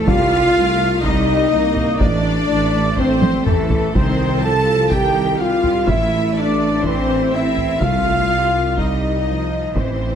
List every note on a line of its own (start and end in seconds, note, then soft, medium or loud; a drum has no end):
0.06 0.49 C2 medium
0.06 0.50 C2 medium
0.06 0.54 G3 medium
0.06 1.04 F4 loud
0.06 1.02 F5 loud
0.06 taiko loud
0.55 0.98 C2 medium
0.55 0.99 C2 medium
0.55 1.03 A3 medium
1.03 1.46 C2 medium
1.03 1.47 C2 medium
1.03 1.53 G3 medium
1.03 1.99 D#4 medium
1.03 1.85 D#4 loud
1.03 2.00 D#5 medium
1.03 2.01 D#5 medium
1.03 taiko medium
1.52 1.94 C2 medium
1.52 1.95 C2 medium
1.52 2.01 A#3 medium
1.77 taiko low medium
1.99 2.43 A1 medium
1.99 2.44 A1 medium
1.99 3.47 A3 medium
1.99 2.97 D4 loud
1.99 2.96 D4 loud
1.99 2.94 D5 loud
1.99 2.95 D5 medium
1.99 taiko loud
2.49 2.91 A1 medium
2.49 2.92 A1 medium
2.97 3.40 A1 medium
2.97 3.41 A1 medium
2.97 3.45 C4 loud
2.97 3.46 C4 medium
2.97 3.45 C5 medium
2.97 3.46 C5 medium
2.97 3.32 C5 loud
2.97 taiko medium
3.22 taiko high medium
3.45 3.88 A1 medium
3.45 3.89 A1 medium
3.45 3.95 E3 medium
3.45 3.94 A3 loud
3.45 3.95 A3 medium
3.45 3.94 A4 medium
3.45 3.93 A4 medium
3.45 taiko low-mid medium
3.70 taiko low medium
3.94 5.89 C2 medium
3.94 5.84 C2 medium
3.94 4.63 C3 medium
3.94 4.42 D#3 medium
3.94 4.42 C4 medium
3.94 4.43 C4 loud
3.94 4.42 C5 medium
3.94 4.43 C5 medium
3.94 taiko medium
4.42 4.91 F3 medium
4.42 4.91 A4 medium
4.42 4.91 A4 loud
4.42 4.91 A5 medium
4.42 4.90 A5 loud
4.42 4.91 A5 loud
4.90 5.39 D#3 medium
4.90 5.38 G4 medium
4.90 5.41 G4 medium
4.90 5.39 G5 medium
4.90 5.38 G5 medium
4.90 5.39 G5 medium
4.90 taiko medium
5.38 5.88 G3 medium
5.38 5.87 F4 medium
5.38 5.88 F4 loud
5.38 5.87 F5 medium
5.38 5.88 F5 medium
5.64 taiko low soft
5.85 7.81 A1 medium
5.85 7.83 A1 medium
5.85 6.83 A3 medium
5.85 6.36 E4 medium
5.85 6.35 E5 medium
5.85 6.36 E5 medium
5.85 taiko loud
5.89 6.37 E4 loud
5.89 6.36 E5 medium
6.35 6.84 D4 medium
6.35 6.83 D5 medium
6.35 6.84 D5 medium
6.35 6.86 D5 medium
6.39 6.86 D4 loud
6.82 7.33 E3 medium
6.82 7.33 C4 medium
6.82 7.32 C5 medium
6.82 taiko medium
6.87 7.35 C4 loud
6.87 7.33 C5 medium
7.32 7.80 C4 medium
7.32 7.81 E4 medium
7.32 7.83 E4 loud
7.32 7.81 E5 medium
7.32 7.82 E5 medium
7.58 taiko low soft
7.81 9.59 C2 medium
7.81 9.75 C2 medium
7.81 8.50 C3 medium
7.81 8.29 A3 medium
7.81 8.76 F4 medium
7.81 8.78 F4 loud
7.81 8.78 F5 medium
7.81 8.78 F5 loud
7.81 taiko medium
8.30 8.78 G3 medium
8.78 9.26 G3 medium
8.78 9.75 D#4 medium
8.78 9.57 D#4 medium
8.78 9.75 D#5 medium
8.78 9.73 D#5 medium
8.78 taiko medium
9.27 9.75 F3 medium
9.74 10.15 A1 medium
9.74 10.15 E3 medium
9.74 10.15 C4 medium
9.74 10.15 C5 medium
9.74 taiko medium